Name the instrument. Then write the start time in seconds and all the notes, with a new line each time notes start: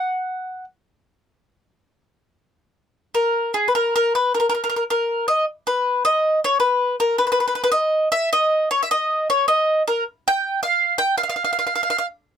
mandolin
Already playing: F#5
3.15 A#4
3.54 G#4
3.68 B4
3.75 A#4
3.96 A#4
4.15 B4
4.35 A#4
4.40 A#4
4.49 A#4
4.55 A#4
4.64 A#4
4.70 A#4
4.76 A#4
4.90 A#4
5.28 D#5
5.67 B4
6.05 D#5
6.44 C#5
6.60 B4
7.00 A#4
7.18 B4
7.27 B4
7.32 B4
7.40 B4
7.48 B4
7.55 B4
7.64 B4
7.72 D#5
8.12 E5
8.33 D#5
8.71 C#5
8.83 E5
8.91 D#5
9.30 C#5
9.48 D#5
9.88 A#4
10.28 G5
10.63 F5
10.98 G5
11.18 F5
11.23 F5
11.29 F5
11.36 F5
11.44 F5
11.53 F5
11.59 F5
11.67 F5
11.76 F5
11.83 F5
11.90 F5
11.98 F5